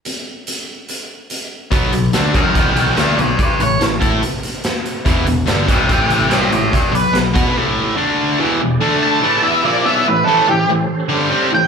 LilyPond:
<<
  \new Staff \with { instrumentName = "Lead electric guitar" } { \time 4/4 \key a \major \tempo 4 = 144 r1 | r4. <dis'' g''>8 <dis'' g''>8 <dis'' g''>8 <b' d''>8 <b' d''>8 | <b' d''>8 cis''8 r2. | r4. <e'' g''>8 <e'' g''>8 <e'' g''>8 <cis'' e''>8 <cis'' e''>8 |
<b' d''>8 b'8 r2. | r4. a''4 e''8 d''8 e''8 | b'8 a'8 g'8 r2 g''8 | }
  \new Staff \with { instrumentName = "Tonewheel organ" } { \time 4/4 \key a \major r1 | r1 | r1 | r1 |
r1 | <e' g' gis' d''>4 <a d' a' d''>4 <e' g' gis' d''>2 | <cis' g' a' bis'>1 | }
  \new Staff \with { instrumentName = "Overdriven electric guitar" } { \clef bass \time 4/4 \key a \major r1 | <b, fis b>8 <b, fis>8 <d a d'>8 <fis cis' fis'>8 <b, fis b>4 <d a d'>8 <b, fis>8 | r8 <a, e>8 <a, e>8 <a e' a'>8 r2 | <e, b, e>8 <e, b,>8 <g, d g>8 <b, fis b>8 <a, e a>4 <c g c'>8 <a, e>8 |
r8 <b, fis>8 <b, fis>8 <b fis' b'>8 <a, e a>4 <d a d'>4 | <e, b, e>8 <e, b,>8 <d a d'>4 <a, e a>8 <e b e'>8 <ais, f ais>8 <b, fis b>8 | <a, e>8 <a, e a>8 <a, e>8 <a, e>8 r8 <g, d g>8 <bis, g bis>8 <a, e>8 | }
  \new Staff \with { instrumentName = "Picked electric bass" } { \clef bass \time 4/4 \key a \major r1 | b,,8 b,,8 d,8 fis,8 b,,4 d,8 b,,8 | r8 a,,8 a,,8 a,8 r2 | e,,8 e,,8 g,,8 b,,8 a,,4 c,8 a,,8 |
r8 b,,8 b,,8 b,8 r2 | r1 | r1 | }
  \new DrumStaff \with { instrumentName = "Drums" } \drummode { \time 4/4 hh4 hh4 hh4 hh4 | <hh bd>8 hh8 <hh sn>8 <hh bd>8 <hh bd>8 hh8 <hh sn>8 hh8 | <hh bd>8 hh8 <hh sn>8 <hh bd>8 hh8 hh8 <hh sn>8 hh8 | <hh bd>8 hh8 <hh sn>8 <hh bd>8 <hh bd>8 hh8 <hh sn>8 hh8 |
<hh bd>8 hh8 <hh sn>8 <hh bd>8 r4 r4 | r4 r4 r4 r4 | r4 r4 r4 r4 | }
>>